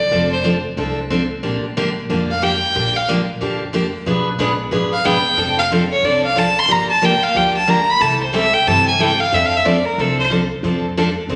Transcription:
Already playing: D5
0.11 F1 F3 C4 D4 A4
0.33 C5
0.44 F3 C4 D4 A4
0.77 C2 F3 C4 D4 A4
1.10 F3 C4 D4 A4
1.43 A#1 D3 F3 A#3 D4 G4
1.77 D3 F3 A#3 D4 G4
2.09 F2 D3 F3 A#3 D4 G4
2.31 F5
2.42 D3 F3 A#3 D4 G4 G5
2.75 A#1 D3 F3 A#3 D4 G4
2.96 F5
3.08 D3 F3 A#3 D4 G4
3.41 F2 D3 F3 A#3 D4 G4
3.73 D3 F3 A#3 D4 G4
4.06 B1 B2 F3 B3 D4 G#4 B4
4.38 A#1 B2 F3 B3 D4 G#4 B4
4.71 G#1 B2 F3 B3 D4 G#4 B4
4.93 F5
5.04 G1 B2 F3 B3 D4 G#4 B4 G5
5.37 F1 F3 C4 D4 A4
5.58 F5
5.71 F3 C4 D4 A4
5.92 C#5
6.02 C2 F3 C4 D4 A4 D5
6.25 F5
6.36 F3 C4 D4 A4 A5
6.58 C6
6.68 G1 D3 F3 A#3 D4 G4 A#5
6.90 A5
7.02 D3 F3 A#3 D4 G4 G5
7.23 F5
7.35 D2 D3 F3 A#3 D4 G4 G5
7.57 A5
7.67 D3 F3 A#3 D4 G4 A#5
7.90 B5
8.00 C2 C3 E3 G3 C4 E4 A4 A5
8.23 C5
8.33 C3 E3 G3 C4 E4 A4 E5
8.54 G5
8.66 G2 C3 E3 G3 C4 E4 A4 A5
8.88 G#5
8.99 C3 E3 G3 C4 E4 A4 G5
9.20 F5
9.33 F2 F3 C4 D4 A4 E5
9.45 F5
9.56 E5
9.65 F3 C4 D4 A4 D5
9.85 A#4
9.98 C2 F3 C4 D4 A4
10.19 C5
10.30 F3 C4 D4 A4
10.63 F2 F3 C4 D4 A4
10.97 F3 C4 D4 A4
11.29 C2 F3 C4 D4 A4

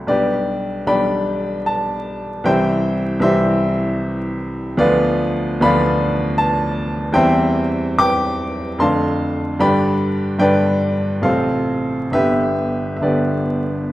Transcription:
Already playing: C2 F#3 A3 D4 F#4 A4 D5
0.07 B1 G3 D4 G4 B4 D5
0.87 B1 G3 D4 D5 G5 B5
1.66 A5
2.44 C2 E3 G3 C4 C5 E5 G5
3.20 C2 E3 G3 C4 G4 C5 E5
4.77 D2 F3 B3 F4 B4 D5
5.61 D2 F3 B3 D5 F5 B5
6.38 A5
7.12 E2 E3 G3 C4 C5 E5 G5
7.99 G5 D6
8.78 F2 D3 A3 D4 F5 A5 C6
9.60 G2 D3 G3 D4 D5 G5 B5
10.39 G2 D3 G3 D4 B4 D5 G5
11.22 A1 C3 C4 F4 A4 C5 F5
12.11 G1 D3 B3 G4 B4 E5
12.97 E5
13.01 G1 D3 B3 G4 B4 D5

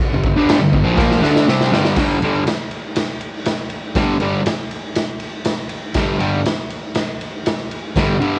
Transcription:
0.13 G2 D3
0.23 G2 D3, kick
0.37 G2 D3 G3
0.49 snare, crash
0.60 G2 D3
0.73 G2 D3, kick
0.85 A#2 F3
0.97 A#2 F3 A#3, kick, snare
1.11 snare
1.22 D3 A3 D4, snare
1.36 snare
1.48 C3 G3 C4, snare
1.61 snare
1.71 G2 D3 G3, snare
1.85 snare
1.96 G2 D3 G3, kick, snare, crash
2.22 G2 D3 G3, ride
2.47 snare, ride
2.71 ride
2.96 snare, ride
3.21 ride
3.45 snare, ride
3.70 ride
3.95 G2 D3 G3, kick, snare, ride
4.20 G2 D3 G3, ride
4.46 snare, ride
4.71 ride
4.95 snare, ride
5.20 ride
5.45 snare, ride
5.69 ride
5.94 G2 D3 G3, kick, snare, ride
6.19 G2 D3 G3, ride
6.45 snare, ride
6.70 ride
6.95 snare, ride
7.21 ride
7.46 snare, ride
7.71 ride
7.96 G2 D3 G3, kick, snare, ride
8.20 G2 D3 G3, ride

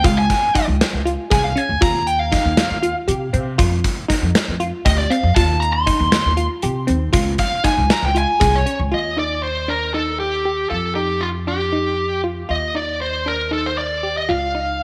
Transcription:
0.04 C#2 F4 F5, kick, closed hi-hat
0.19 G#5
0.30 kick, snare, closed hi-hat
0.55 D#4, kick, closed hi-hat
0.68 C#2
0.81 snare, closed hi-hat
0.93 C#2
1.05 F4, closed hi-hat
1.30 C2 G#4 G#5, kick, snare, closed hi-hat
1.44 F5
1.56 C#4 G#5, closed hi-hat
1.69 D2
1.81 D#2 F4 A#5, kick, closed hi-hat
2.07 G5, closed hi-hat
2.19 F5
2.32 D#4, kick, snare, closed hi-hat
2.45 D#2
2.57 snare, closed hi-hat
2.70 D#2
2.83 F4, closed hi-hat
3.08 C3 G4, closed hi-hat
3.33 C3 C4, closed hi-hat
3.58 F2 F4, kick, closed hi-hat
3.84 kick, closed hi-hat
4.08 D#4, kick, snare, closed hi-hat
4.22 F2
4.35 snare, closed hi-hat
4.48 F2
4.60 F4, closed hi-hat
4.85 D2 G4 D#5, kick, closed hi-hat
4.98 D5
5.10 C4 F5, closed hi-hat
5.23 F2
5.36 D#2 F4 A5, kick, closed hi-hat
5.60 A#5, closed hi-hat
5.73 C6
5.86 D#4, kick, closed hi-hat
6.00 D#2
6.12 snare, closed hi-hat
6.25 D#2
6.37 F4, closed hi-hat
6.62 C3 G4, closed hi-hat
6.87 D#2 C4, closed hi-hat
7.13 C#2 F4, kick, closed hi-hat
7.38 F5, kick, closed hi-hat
7.64 D#4 G#5, kick, snare, closed hi-hat
7.77 C#2
7.90 A#5, snare, closed hi-hat
8.03 C#2 G5
8.15 F4 G#5, closed hi-hat
8.40 C2 G#4, kick, snare, closed hi-hat
8.55 C#5
8.66 C#4, closed hi-hat
8.79 C#2
8.92 D#2 F4 D#5
9.17 D#4 D5
9.43 C5
9.68 D4 A#4
9.94 D#4 A4
10.20 G4
10.45 G4
10.70 F2 F4 A4
10.95 D#4 G4
11.21 F4
11.47 D4 G4
11.73 D#4
12.24 F4
12.49 D#2 F4 D#5
12.75 D#4 D5
13.02 C5
13.26 D4 A#4
13.51 D#4 A4
13.66 C5
13.78 D5
14.03 G4
14.17 D#5
14.29 C#2 F4 F5
14.55 D#4

